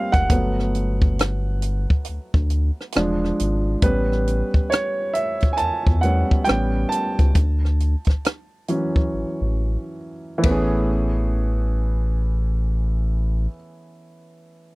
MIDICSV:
0, 0, Header, 1, 4, 480
1, 0, Start_track
1, 0, Key_signature, 3, "major"
1, 0, Tempo, 882353
1, 159, Time_signature, 4, 2, 24, 8
1, 8024, End_track
2, 0, Start_track
2, 0, Title_t, "Grand piano"
2, 0, Program_c, 0, 0
2, 0, Control_c, 0, 64, 127
2, 0, Note_on_c, 0, 55, 53
2, 0, Note_on_c, 0, 58, 51
2, 0, Note_on_c, 0, 60, 58
2, 0, Note_on_c, 0, 77, 83
2, 67, Note_on_c, 0, 78, 102
2, 75, Note_off_c, 0, 77, 0
2, 140, Note_off_c, 0, 55, 0
2, 142, Note_off_c, 0, 58, 0
2, 143, Note_off_c, 0, 60, 0
2, 164, Note_on_c, 0, 54, 44
2, 165, Note_on_c, 0, 57, 40
2, 166, Control_c, 0, 64, 0
2, 170, Note_on_c, 0, 59, 46
2, 270, Control_c, 0, 64, 127
2, 505, Note_off_c, 0, 54, 0
2, 505, Note_off_c, 0, 57, 0
2, 508, Note_off_c, 0, 59, 0
2, 527, Note_off_c, 0, 78, 0
2, 1605, Control_c, 0, 64, 0
2, 1607, Note_on_c, 0, 53, 55
2, 1611, Note_on_c, 0, 56, 49
2, 1613, Note_on_c, 0, 62, 56
2, 1686, Control_c, 0, 64, 127
2, 1946, Note_off_c, 0, 53, 0
2, 1948, Note_off_c, 0, 56, 0
2, 1949, Note_off_c, 0, 62, 0
2, 2084, Note_on_c, 0, 71, 76
2, 2085, Control_c, 0, 64, 0
2, 2088, Note_on_c, 0, 55, 47
2, 2092, Note_on_c, 0, 59, 40
2, 2096, Note_on_c, 0, 61, 46
2, 2184, Control_c, 0, 64, 127
2, 2427, Note_off_c, 0, 55, 0
2, 2429, Note_off_c, 0, 59, 0
2, 2431, Note_off_c, 0, 61, 0
2, 2539, Note_off_c, 0, 71, 0
2, 2555, Note_on_c, 0, 73, 81
2, 2794, Note_on_c, 0, 76, 83
2, 2804, Note_off_c, 0, 73, 0
2, 2842, Note_off_c, 0, 76, 0
2, 3008, Note_on_c, 0, 80, 68
2, 3031, Note_on_c, 0, 81, 86
2, 3037, Note_off_c, 0, 80, 0
2, 3270, Note_on_c, 0, 78, 82
2, 3282, Note_off_c, 0, 81, 0
2, 3285, Note_on_c, 0, 55, 38
2, 3285, Note_on_c, 0, 59, 38
2, 3288, Note_on_c, 0, 61, 46
2, 3500, Note_off_c, 0, 55, 0
2, 3500, Note_off_c, 0, 59, 0
2, 3501, Note_off_c, 0, 61, 0
2, 3506, Note_on_c, 0, 79, 90
2, 3518, Note_on_c, 0, 55, 48
2, 3520, Note_on_c, 0, 59, 45
2, 3522, Note_off_c, 0, 78, 0
2, 3525, Note_on_c, 0, 61, 54
2, 3527, Control_c, 0, 64, 0
2, 3631, Control_c, 0, 64, 127
2, 3747, Note_on_c, 0, 81, 89
2, 3760, Note_off_c, 0, 79, 0
2, 3861, Note_off_c, 0, 55, 0
2, 3863, Note_off_c, 0, 59, 0
2, 3865, Note_off_c, 0, 61, 0
2, 4006, Control_c, 0, 64, 0
2, 4115, Control_c, 0, 64, 127
2, 4724, Note_on_c, 0, 52, 41
2, 4725, Note_on_c, 0, 54, 43
2, 4730, Note_on_c, 0, 61, 49
2, 5411, Note_off_c, 0, 81, 0
2, 5639, Note_off_c, 0, 52, 0
2, 5647, Note_on_c, 0, 52, 70
2, 5660, Note_off_c, 0, 54, 0
2, 5663, Note_off_c, 0, 61, 0
2, 5666, Note_on_c, 0, 57, 58
2, 5684, Note_on_c, 0, 59, 62
2, 5685, Control_c, 0, 64, 0
2, 5702, Note_on_c, 0, 61, 60
2, 5718, Note_on_c, 0, 68, 70
2, 5773, Control_c, 0, 64, 127
2, 5925, Control_c, 0, 64, 0
2, 6019, Control_c, 0, 64, 127
2, 7292, Note_off_c, 0, 52, 0
2, 7310, Note_off_c, 0, 57, 0
2, 7329, Note_off_c, 0, 59, 0
2, 7346, Note_off_c, 0, 61, 0
2, 7363, Note_off_c, 0, 68, 0
2, 8024, End_track
3, 0, Start_track
3, 0, Title_t, "Analog synth bass"
3, 0, Program_c, 1, 38
3, 81, Note_on_c, 1, 30, 79
3, 150, Note_off_c, 1, 30, 0
3, 170, Note_on_c, 1, 31, 110
3, 1014, Note_off_c, 1, 31, 0
3, 1135, Note_on_c, 1, 38, 49
3, 1192, Note_off_c, 1, 38, 0
3, 1277, Note_on_c, 1, 38, 76
3, 1473, Note_off_c, 1, 38, 0
3, 1612, Note_on_c, 1, 28, 91
3, 1806, Note_off_c, 1, 28, 0
3, 1852, Note_on_c, 1, 32, 91
3, 2045, Note_off_c, 1, 32, 0
3, 2087, Note_on_c, 1, 33, 98
3, 2408, Note_off_c, 1, 33, 0
3, 2478, Note_on_c, 1, 40, 43
3, 2511, Note_off_c, 1, 40, 0
3, 3051, Note_on_c, 1, 40, 47
3, 3109, Note_off_c, 1, 40, 0
3, 3198, Note_on_c, 1, 40, 72
3, 3394, Note_off_c, 1, 40, 0
3, 3534, Note_on_c, 1, 33, 91
3, 3727, Note_off_c, 1, 33, 0
3, 3916, Note_on_c, 1, 37, 87
3, 3987, Note_off_c, 1, 37, 0
3, 4005, Note_on_c, 1, 38, 85
3, 4327, Note_off_c, 1, 38, 0
3, 4397, Note_on_c, 1, 33, 44
3, 4431, Note_off_c, 1, 33, 0
3, 4971, Note_on_c, 1, 33, 50
3, 5028, Note_off_c, 1, 33, 0
3, 5121, Note_on_c, 1, 33, 73
3, 5315, Note_off_c, 1, 33, 0
3, 5685, Note_on_c, 1, 33, 91
3, 7329, Note_off_c, 1, 33, 0
3, 8024, End_track
4, 0, Start_track
4, 0, Title_t, "Drums"
4, 74, Note_on_c, 9, 36, 81
4, 75, Note_on_c, 9, 42, 31
4, 129, Note_off_c, 9, 36, 0
4, 129, Note_off_c, 9, 42, 0
4, 161, Note_on_c, 9, 42, 69
4, 162, Note_on_c, 9, 36, 107
4, 216, Note_off_c, 9, 42, 0
4, 217, Note_off_c, 9, 36, 0
4, 323, Note_on_c, 9, 37, 31
4, 378, Note_off_c, 9, 37, 0
4, 406, Note_on_c, 9, 42, 52
4, 461, Note_off_c, 9, 42, 0
4, 553, Note_on_c, 9, 36, 81
4, 607, Note_off_c, 9, 36, 0
4, 648, Note_on_c, 9, 42, 74
4, 657, Note_on_c, 9, 37, 96
4, 702, Note_off_c, 9, 42, 0
4, 712, Note_off_c, 9, 37, 0
4, 881, Note_on_c, 9, 42, 54
4, 936, Note_off_c, 9, 42, 0
4, 1035, Note_on_c, 9, 36, 75
4, 1089, Note_off_c, 9, 36, 0
4, 1113, Note_on_c, 9, 42, 64
4, 1167, Note_off_c, 9, 42, 0
4, 1273, Note_on_c, 9, 36, 79
4, 1327, Note_off_c, 9, 36, 0
4, 1360, Note_on_c, 9, 42, 49
4, 1414, Note_off_c, 9, 42, 0
4, 1527, Note_on_c, 9, 37, 30
4, 1581, Note_off_c, 9, 37, 0
4, 1590, Note_on_c, 9, 42, 56
4, 1613, Note_on_c, 9, 37, 83
4, 1645, Note_off_c, 9, 42, 0
4, 1667, Note_off_c, 9, 37, 0
4, 1765, Note_on_c, 9, 37, 28
4, 1819, Note_off_c, 9, 37, 0
4, 1847, Note_on_c, 9, 42, 62
4, 1901, Note_off_c, 9, 42, 0
4, 2078, Note_on_c, 9, 42, 60
4, 2080, Note_on_c, 9, 36, 107
4, 2132, Note_off_c, 9, 42, 0
4, 2135, Note_off_c, 9, 36, 0
4, 2242, Note_on_c, 9, 37, 28
4, 2296, Note_off_c, 9, 37, 0
4, 2326, Note_on_c, 9, 42, 49
4, 2380, Note_off_c, 9, 42, 0
4, 2471, Note_on_c, 9, 36, 76
4, 2525, Note_off_c, 9, 36, 0
4, 2567, Note_on_c, 9, 42, 73
4, 2577, Note_on_c, 9, 37, 97
4, 2622, Note_off_c, 9, 42, 0
4, 2631, Note_off_c, 9, 37, 0
4, 2800, Note_on_c, 9, 42, 54
4, 2855, Note_off_c, 9, 42, 0
4, 2940, Note_on_c, 9, 42, 29
4, 2953, Note_on_c, 9, 36, 74
4, 2994, Note_off_c, 9, 42, 0
4, 3007, Note_off_c, 9, 36, 0
4, 3032, Note_on_c, 9, 42, 65
4, 3087, Note_off_c, 9, 42, 0
4, 3191, Note_on_c, 9, 36, 82
4, 3245, Note_off_c, 9, 36, 0
4, 3279, Note_on_c, 9, 42, 47
4, 3334, Note_off_c, 9, 42, 0
4, 3434, Note_on_c, 9, 36, 81
4, 3489, Note_off_c, 9, 36, 0
4, 3509, Note_on_c, 9, 42, 55
4, 3532, Note_on_c, 9, 37, 82
4, 3563, Note_off_c, 9, 42, 0
4, 3586, Note_off_c, 9, 37, 0
4, 3764, Note_on_c, 9, 42, 60
4, 3818, Note_off_c, 9, 42, 0
4, 3910, Note_on_c, 9, 42, 30
4, 3911, Note_on_c, 9, 36, 75
4, 3964, Note_off_c, 9, 42, 0
4, 3966, Note_off_c, 9, 36, 0
4, 3997, Note_on_c, 9, 42, 61
4, 4000, Note_on_c, 9, 36, 96
4, 4051, Note_off_c, 9, 42, 0
4, 4054, Note_off_c, 9, 36, 0
4, 4161, Note_on_c, 9, 37, 30
4, 4215, Note_off_c, 9, 37, 0
4, 4245, Note_on_c, 9, 42, 48
4, 4299, Note_off_c, 9, 42, 0
4, 4377, Note_on_c, 9, 42, 29
4, 4390, Note_on_c, 9, 36, 71
4, 4405, Note_on_c, 9, 37, 26
4, 4431, Note_off_c, 9, 42, 0
4, 4445, Note_off_c, 9, 36, 0
4, 4459, Note_off_c, 9, 37, 0
4, 4487, Note_on_c, 9, 42, 70
4, 4496, Note_on_c, 9, 37, 95
4, 4541, Note_off_c, 9, 42, 0
4, 4550, Note_off_c, 9, 37, 0
4, 4723, Note_on_c, 9, 42, 51
4, 4777, Note_off_c, 9, 42, 0
4, 4873, Note_on_c, 9, 36, 68
4, 4928, Note_off_c, 9, 36, 0
4, 5676, Note_on_c, 9, 51, 72
4, 5679, Note_on_c, 9, 36, 83
4, 5731, Note_off_c, 9, 51, 0
4, 5733, Note_off_c, 9, 36, 0
4, 8024, End_track
0, 0, End_of_file